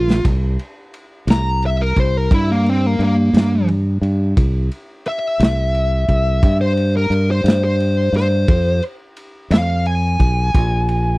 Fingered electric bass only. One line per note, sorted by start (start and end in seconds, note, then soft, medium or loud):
0.00 0.22 A#1 medium
0.25 0.56 C2 medium
1.27 1.92 C2 medium
1.97 2.28 C2 medium
2.31 2.95 G2 medium
2.99 3.31 G2 medium
3.33 3.98 G2 medium
4.01 4.33 G2 medium
4.37 4.68 C2 medium
5.39 6.04 C2 medium
6.09 6.40 C2 medium
6.43 7.07 G2 loud
7.10 7.42 G2 medium
7.44 8.09 G2 medium
8.13 8.45 G2 medium
8.48 8.80 F2 medium
9.50 10.16 F2 loud
10.19 10.51 B1 loud
10.55 11.18 A#1 medium